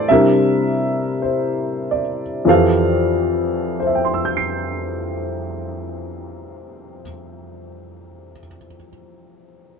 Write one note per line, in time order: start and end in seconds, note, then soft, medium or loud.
0.08 2.46 C3 soft
0.08 2.47 G3 soft
0.08 2.47 D4 soft
0.08 2.47 E4 soft
0.08 2.47 A#4 medium
0.08 2.01 E5 medium
1.22 2.22 C5 soft
1.91 2.80 D5 soft
2.45 7.00 F2 soft
2.45 7.02 E3 soft
2.45 7.01 F3 soft
2.45 7.03 G4 soft
2.45 7.03 A4 medium
2.45 7.00 F5 medium
3.80 8.31 C5 soft
3.87 8.38 E5 soft
3.95 8.46 G5 soft
4.05 8.56 C6 soft
4.14 8.65 E6 soft
4.25 8.76 G6 soft
4.37 8.88 C7 soft